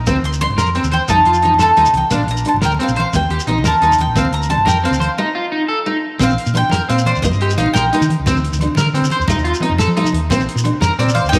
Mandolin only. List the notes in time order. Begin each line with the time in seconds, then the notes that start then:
0.25 C6
0.41 C6
0.93 G5
1.10 A5
1.62 A5
1.97 G5
2.12 F5
2.31 A#5
2.48 A5
2.65 G5
2.83 F5
3.00 F5
3.16 G5
3.48 D#5
3.67 A5
4.01 G5
4.18 F5
4.34 A#5
4.50 A5
4.68 G5
4.85 F5
5.18 D#5
6.23 F5
6.57 G5
6.90 F5
7.07 D5
7.22 D#5
7.58 F5
7.74 G5
10.99 D5
11.15 F5
11.29 G5